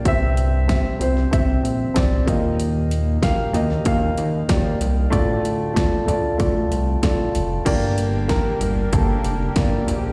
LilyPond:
<<
  \new Staff \with { instrumentName = "Upright piano" } { \time 4/4 \key g \minor \tempo 4 = 95 <c' g' e''>8. r16 <c' g' e''>8 <c' g' c''>8 <c' g' e''>8. r16 <c' g' d''>8 <bes g' ees''>8~ | <bes g' ees''>8 r8 <bes g' f''>8 <bes g' ees''>8 <bes g' f''>8. r16 <bes g' d''>8. r16 | <a f' d''>8. r16 <a f' d''>8 <a f' d''>8 <a f' d''>8. r16 <a f' d''>8. r16 | <bes g' d''>8. r16 <bes g' bes'>8. r16 <bes g' a'>8. r16 <bes g' d''>8. r16 | }
  \new Staff \with { instrumentName = "Upright piano" } { \clef bass \time 4/4 \key g \minor g,4. r2 bes,8~ | bes,4 r2. | a,4. r2 r8 | <g, d>4. r2 r8 | }
  \new Staff \with { instrumentName = "Analog synth pad" } { \clef bass \time 4/4 \key g \minor r1 | r1 | r1 | <d g bes g'>1 | }
  \new Staff \with { instrumentName = "Analog synth bass" } { \clef bass \time 4/4 \key g \minor c,4~ c,16 r16 c,8 c,8 bes,,8 c,8 ees,8~ | ees,4~ ees,16 r16 ees,8 ees,8 ees,8 ees,8 c,8 | d,4~ d,16 r16 d,8 d,8 c,8 d,8 f,,8 | g,,4~ g,,16 r16 g,,8 g,,8 f,,8 g,,8 bes,,8 | }
  \new DrumStaff \with { instrumentName = "Drums" } \drummode { \time 4/4 <hh bd>8 hh8 <hh bd sn>8 hh16 sn16 <hh bd>8 hh8 <hh bd sn>8 <hh bd>8 | hh8 hh8 <hh bd sn>8 <hh tomfh>16 sn16 <hh bd>8 hh8 <hh bd sn>8 hh8 | <hh bd>8 hh8 <hh bd sn>8 <hh tomfh>8 <hh bd>8 hh8 <hh bd sn>8 hh8 | <cymc hh bd>8 hh8 <hh bd sn>8 <hh tomfh>8 <hh bd>8 hh8 <hh bd sn>8 <hh tomfh>8 | }
>>